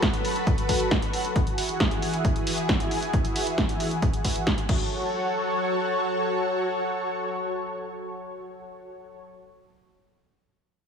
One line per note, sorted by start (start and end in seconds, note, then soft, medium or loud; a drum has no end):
0.00 1.32 F#3 medium
0.00 4.65 F#4 medium
0.00 1.32 A4 medium
0.00 1.34 B4 medium
0.00 kick loud
0.00 snare loud
0.00 closed hi-hat medium
0.14 closed hi-hat medium
0.25 open hi-hat medium
0.36 closed hi-hat medium
0.47 kick loud
0.47 closed hi-hat medium
0.58 closed hi-hat medium
0.69 kick medium
0.69 open hi-hat loud
0.80 closed hi-hat medium
0.91 kick loud
0.91 snare loud
0.91 closed hi-hat medium
1.02 closed hi-hat medium
1.13 open hi-hat medium
1.25 closed hi-hat medium
1.36 4.66 E3 medium
1.36 4.66 E4 medium
1.36 4.66 G#4 medium
1.36 kick loud
1.36 closed hi-hat medium
1.47 closed hi-hat medium
1.58 open hi-hat medium
1.69 closed hi-hat medium
1.80 kick loud
1.80 snare loud
1.80 closed hi-hat medium
1.91 closed hi-hat medium
2.02 open hi-hat medium
2.14 closed hi-hat medium
2.25 kick loud
2.25 closed hi-hat medium
2.36 closed hi-hat medium
2.47 open hi-hat medium
2.58 closed hi-hat medium
2.69 kick loud
2.69 snare loud
2.69 closed hi-hat medium
2.80 closed hi-hat medium
2.91 open hi-hat medium
3.02 closed hi-hat medium
3.13 kick loud
3.13 closed hi-hat medium
3.25 closed hi-hat medium
3.36 open hi-hat medium
3.47 closed hi-hat medium
3.58 kick loud
3.58 snare loud
3.58 closed hi-hat medium
3.69 closed hi-hat medium
3.80 open hi-hat medium
3.91 closed hi-hat medium
4.02 kick loud
4.02 closed hi-hat medium
4.13 closed hi-hat medium
4.25 kick medium
4.25 open hi-hat medium
4.36 closed hi-hat medium
4.47 kick loud
4.47 snare loud
4.47 closed hi-hat medium
4.58 closed hi-hat medium
4.69 9.23 F#3 medium
4.69 9.23 F#4 medium
4.69 9.23 A4 medium
4.69 9.23 C#5 medium
4.69 kick loud
4.69 crash medium